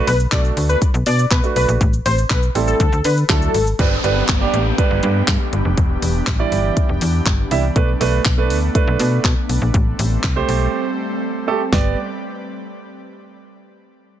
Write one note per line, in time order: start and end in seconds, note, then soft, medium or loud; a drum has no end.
0.07 0.27 B1 loud
0.07 0.16 B4 medium
0.07 open hi-hat medium
0.07 shaker medium
0.20 shaker medium
0.32 0.52 B1 loud
0.32 0.80 A3 medium
0.32 0.80 D4 medium
0.32 0.80 F#4 medium
0.32 0.80 A4 medium
0.32 0.41 D5 medium
0.32 kick loud
0.32 clap loud
0.32 closed hi-hat medium
0.32 shaker medium
0.44 shaker medium
0.57 0.76 D2 medium
0.57 open hi-hat medium
0.57 shaker medium
0.69 0.78 B4 medium
0.69 shaker medium
0.82 kick loud
0.82 closed hi-hat medium
0.82 shaker medium
0.94 1.04 B1 loud
0.94 shaker medium
1.06 1.26 B2 loud
1.06 1.25 D5 medium
1.06 open hi-hat medium
1.06 shaker medium
1.19 shaker medium
1.31 1.41 B2 loud
1.31 1.37 F#4 medium
1.31 1.40 B4 medium
1.31 1.37 B4 medium
1.31 kick loud
1.31 clap loud
1.31 closed hi-hat medium
1.31 shaker medium
1.43 1.81 A3 medium
1.43 1.81 D4 medium
1.43 1.81 F#4 medium
1.43 1.81 B4 medium
1.43 shaker medium
1.56 1.66 B1 medium
1.56 1.65 B4 medium
1.56 open hi-hat medium
1.56 shaker medium
1.68 1.78 A#1 medium
1.68 shaker medium
1.81 2.00 A1 loud
1.81 kick loud
1.81 closed hi-hat medium
1.81 shaker medium
1.93 shaker medium
2.06 2.25 A1 loud
2.06 2.15 C5 medium
2.06 open hi-hat medium
2.06 shaker medium
2.18 shaker medium
2.30 2.50 B1 loud
2.30 2.40 B4 medium
2.30 kick loud
2.30 clap loud
2.30 closed hi-hat medium
2.30 shaker medium
2.43 shaker medium
2.55 2.75 A1 medium
2.55 2.80 G3 medium
2.55 2.80 C4 medium
2.55 2.80 E4 medium
2.55 2.80 A4 medium
2.55 open hi-hat medium
2.55 shaker medium
2.68 2.77 A4 medium
2.68 shaker medium
2.80 2.90 D2 loud
2.80 2.98 A4 medium
2.80 kick loud
2.80 closed hi-hat medium
2.80 shaker medium
2.92 3.02 D2 loud
2.92 shaker medium
3.04 3.24 D3 medium
3.04 3.14 B4 medium
3.04 open hi-hat medium
3.04 shaker medium
3.17 shaker medium
3.29 3.49 D2 loud
3.29 3.53 F#3 medium
3.29 3.53 D4 medium
3.29 3.54 E4 medium
3.29 3.65 A4 medium
3.29 3.54 A4 medium
3.29 kick loud
3.29 clap loud
3.29 closed hi-hat medium
3.29 shaker medium
3.42 shaker medium
3.54 3.74 G#1 medium
3.54 open hi-hat medium
3.54 shaker medium
3.67 shaker medium
3.79 3.99 G1 loud
3.79 3.91 G3 medium
3.79 7.72 B3 medium
3.79 9.70 D4 medium
3.79 3.91 D4 medium
3.79 5.76 G4 medium
3.79 3.91 B4 loud
3.79 kick loud
3.79 closed hi-hat medium
3.79 downlifter medium
4.04 4.23 G1 loud
4.04 4.22 G3 medium
4.04 4.22 D4 medium
4.04 4.22 B4 loud
4.04 closed hi-hat medium
4.29 4.48 G1 medium
4.29 kick loud
4.29 clap loud
4.29 closed hi-hat medium
4.41 4.59 G3 medium
4.41 4.59 D4 medium
4.41 4.59 G4 loud
4.54 4.73 A1 loud
4.54 closed hi-hat medium
4.78 5.26 G3 medium
4.78 5.26 D4 medium
4.78 5.26 B4 loud
4.78 kick loud
4.78 closed hi-hat medium
4.91 5.00 G1 loud
5.03 5.22 G2 loud
5.03 closed hi-hat medium
5.28 5.38 G2 loud
5.28 kick loud
5.28 clap loud
5.28 closed hi-hat medium
5.53 5.62 G1 medium
5.53 closed hi-hat medium
5.65 5.75 F1 medium
5.77 5.97 E1 loud
5.77 7.74 E3 medium
5.77 7.74 G4 medium
5.77 kick loud
5.77 closed hi-hat medium
6.02 6.22 E1 medium
6.02 open hi-hat medium
6.27 6.47 A1 loud
6.27 kick loud
6.27 clap loud
6.27 closed hi-hat medium
6.39 6.87 G3 loud
6.39 6.87 E4 medium
6.39 6.88 D5 loud
6.52 6.71 G1 medium
6.52 open hi-hat medium
6.77 kick loud
6.77 closed hi-hat medium
6.89 6.99 E1 loud
7.01 7.21 E2 loud
7.01 open hi-hat medium
7.26 7.46 G1 medium
7.26 kick loud
7.26 clap loud
7.26 closed hi-hat medium
7.51 7.70 C2 medium
7.51 7.63 G3 medium
7.51 7.63 E4 medium
7.51 7.63 E5 loud
7.51 open hi-hat medium
7.76 7.95 B1 loud
7.76 7.88 A3 medium
7.76 9.72 A3 medium
7.76 9.72 B3 medium
7.76 7.88 D4 medium
7.76 7.88 B4 loud
7.76 kick loud
7.76 closed hi-hat medium
8.00 8.20 B1 loud
8.00 8.19 A3 loud
8.00 8.19 D4 medium
8.00 8.19 B4 loud
8.00 open hi-hat medium
8.25 8.52 B1 medium
8.25 kick loud
8.25 clap loud
8.25 closed hi-hat medium
8.38 8.56 A3 medium
8.38 8.56 D4 medium
8.38 8.56 B4 loud
8.50 8.70 D2 loud
8.50 open hi-hat medium
8.75 9.23 A3 medium
8.75 9.23 D4 medium
8.75 9.23 B4 loud
8.75 kick loud
8.75 closed hi-hat medium
8.87 8.97 B1 loud
9.00 9.19 B2 loud
9.00 open hi-hat medium
9.25 9.34 B2 loud
9.25 kick loud
9.25 clap loud
9.25 closed hi-hat medium
9.49 9.59 B1 medium
9.49 open hi-hat medium
9.62 9.71 A#1 medium
9.74 9.94 A1 loud
9.74 11.71 G3 medium
9.74 11.71 A3 medium
9.74 11.71 C4 medium
9.74 kick loud
9.74 closed hi-hat medium
9.99 10.18 A1 loud
9.99 open hi-hat medium
10.24 10.43 C2 loud
10.24 kick loud
10.24 clap loud
10.24 closed hi-hat medium
10.36 10.84 A3 medium
10.36 10.84 G4 medium
10.36 10.84 C5 loud
10.49 10.68 B1 medium
10.49 open hi-hat medium
11.48 11.60 A3 medium
11.48 11.60 G4 medium
11.48 11.60 A4 loud
11.73 11.96 G1 loud
11.73 11.96 B3 medium
11.73 11.96 G4 medium
11.73 11.96 D5 loud
11.73 kick loud
11.73 snare loud